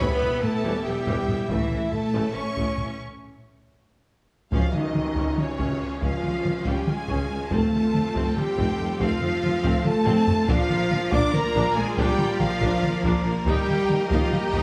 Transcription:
Already playing: string section E4
0.00 double bass section E1, tuba E1, viola section E3 G3, cello section B3, string section B3 G4 E5, french horn section B4, violin section B5, taiko
0.21 tuba E1, double bass section E1, viola section E3 B3, taiko low-mid
0.42 cello section A3, french horn section A4, violin section A5, taiko low-mid
0.64 tuba E1, double bass section E1, viola section E3 G3
0.84 tuba E1, double bass section E1, viola section E3 B3, cello section G3, french horn section G4, violin section G5
1.07 tuba E1, double bass section E1, viola section E3 G3, taiko
1.27 tuba E1, double bass section E1, viola section E3 B3, taiko low-mid
1.48 tuba A1, double bass section A1, viola section C#3 A3, cello section E3, string section A3 A4, french horn section E4, violin section E5, taiko
1.70 tuba A1, double bass section A1, viola section E3 C#4, taiko low-mid
1.91 cello section A3, french horn section A4, violin section A5, taiko low-mid
2.13 tuba A1, double bass section A1, viola section C#3 A3
2.33 tuba A1, double bass section A1, viola section E3 C#4, cello section C#4, french horn section C#5, violin section C#6
2.56 tuba A1, double bass section A1, viola section C#3 A3, taiko
2.78 double bass section A1, tuba A1, viola section E3 C#4, taiko low-mid
4.51 double bass section C#2, tuba C#2, cello section F3, viola section C#4 F4, string section C#4 F4 G#4 F5, french horn section F4, violin section F5, flute section F5, taiko, tam-tam
4.73 double bass section C#2, tuba C#2, cello section D#3, viola section G#3, french horn section D#4, violin section D#5, flute section D#5, taiko mid
4.95 tuba C#2, double bass section C#2, viola section F3, taiko mid
5.16 tuba C#2, double bass section C#2, viola section C#4, taiko
5.38 cello section C#3, french horn section C#4, violin section C#5, flute section C#5, taiko mid
5.58 double bass section C#2, tuba C#2, viola section C#4, taiko
5.80 tuba C#2, double bass section C#2, viola section G#3
6.01 double bass section C#2, tuba C#2, cello section F3, viola section C#4, french horn section F4, violin section F5, flute section F5, taiko
6.23 tuba C#2, double bass section C#2, viola section G#3, taiko mid
6.44 double bass section C#2, tuba C#2, viola section F3, taiko mid
6.65 tuba C#2, double bass section C#2, cello section G3, viola section C#4, french horn section G4, violin section G5, flute section G5, taiko
6.86 cello section G#3, french horn section G#4, violin section G#5, flute section G#5, taiko mid
7.08 tuba C#2, double bass section C#2, viola section C#4, taiko
7.29 double bass section C#2, tuba C#2, viola section G#3
7.49 tuba F1, double bass section F2, cello section A3, string section C4 A4, viola section C4 F4, french horn section A4, violin section A5, flute section A5, taiko
7.73 tuba F1, double bass section F2, viola section A3, taiko mid
7.93 tuba F1, double bass section F2, viola section F3, taiko mid
8.15 tuba F1, double bass section F2, viola section C4, taiko
8.35 cello section G3, french horn section G4, violin section G5, flute section G5, taiko mid
8.57 tuba F1, double bass section F2, viola section C4, taiko
8.78 tuba F1, double bass section F2, viola section A3
8.99 tuba F1, double bass section F2, cello section F3, viola section C4, french horn section F4, violin section F5, flute section F5, taiko
9.20 tuba F1, double bass section F2, viola section A3, taiko mid
9.42 tuba F1, double bass section F2, viola section F3, taiko mid
9.63 tuba F1, double bass section F2, viola section C4, taiko
9.83 cello section A3, french horn section A4, violin section A5, flute section A5, taiko mid
10.05 tuba F1, double bass section F2, viola section C4, taiko low-mid
10.27 tuba F1, double bass section F2, viola section A3, taiko low
10.48 double bass section A#1, tuba A#1, cello section F3, string section A#3 F4 A#4 D5, viola section D4 F4, french horn section F4, violin section F5, flute section F5, taiko
10.69 tuba A#1, double bass section A#1, viola section A#3, taiko mid
10.90 double bass section A#1, tuba A#1, viola section F3, taiko mid
11.11 tuba A#1, double bass section A#1, viola section D4, cello section D4, french horn section D5, violin section D6, flute section D6, taiko
11.32 cello section A#3, french horn section A#4, violin section A#5, flute section A#5, taiko mid
11.55 double bass section A#1, tuba A#1, viola section D4, taiko
11.75 double bass section A#1, tuba A#1, cello section G#3, viola section A#3, french horn section G#4, violin section G#5, flute section G#5
11.96 double bass section A#1, tuba A#1, cello section G3, viola section D4, french horn section G4, violin section G5, flute section G5, taiko
12.18 double bass section A#1, tuba A#1, viola section A#3, taiko mid
12.39 double bass section A#1, tuba A#1, cello section F3, viola section F3, french horn section F4, violin section F5, flute section F5, taiko mid
12.60 double bass section A#1, tuba A#1, viola section D4, taiko
12.83 taiko mid
13.03 double bass section A#1, tuba A#1, viola section D4, taiko
13.24 double bass section A#1, tuba A#1, viola section A#3
13.45 double bass section D#2, tuba D#2, cello section G3, viola section D#4 G4, french horn section G4, string section G4 D#5, violin section G5, flute section G5, taiko
13.67 double bass section D#2, tuba D#2, viola section A#3, taiko mid
13.88 double bass section D#2, tuba D#2, viola section G3, taiko mid
14.09 double bass section D#2, tuba D#2, cello section F3, viola section D#4, french horn section F4, violin section F5, flute section F5, taiko
14.32 cello section G3, french horn section G4, violin section G5, flute section G5, taiko mid
14.53 double bass section D#2, tuba D#2, viola section D#4, taiko

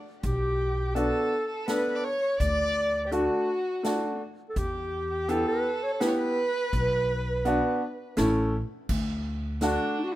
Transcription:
0.22 upright bass B1, violin G4, clarinet G4, kick, closed hi-hat
0.94 upright piano B3 D4 F#4, violin A4, clarinet A4, closed hi-hat
1.48 violin A4
1.66 upright piano B3 D4 A4, violin B4, clarinet B4, snare, closed hi-hat
1.95 violin D5
2.03 violin C#5, clarinet C#5
2.38 upright bass D2, violin D5, clarinet D5, kick, closed hi-hat
3.06 violin G4
3.11 upright piano A3 D4 F#4, violin F#4, clarinet F#4, closed hi-hat
3.83 upright piano A3 D4 F#4, snare, closed hi-hat
4.49 clarinet A4
4.56 upright bass E2, violin G4, clarinet G4, kick, closed hi-hat
5.10 violin G4
5.28 upright piano B3 E4 G4, violin A4, clarinet A4, closed hi-hat
5.48 clarinet B4
5.83 clarinet C#5
5.94 clarinet C#5
6.00 upright piano B3 E4 G4, violin B4, clarinet B4, snare, closed hi-hat
6.07 violin C#5
6.15 violin B4
6.73 upright bass B1, kick, closed hi-hat
7.45 upright piano B3 D4 F#4, closed hi-hat
8.17 upright bass A1, upright piano A3 C#4 E4, snare, closed hi-hat
8.89 upright bass D2, kick, crash
9.61 upright piano A3 D4 F#4, violin D4, clarinet D4, snare, closed hi-hat
9.99 clarinet D#4
10.04 clarinet F#4, violin F#4
10.12 violin D#4

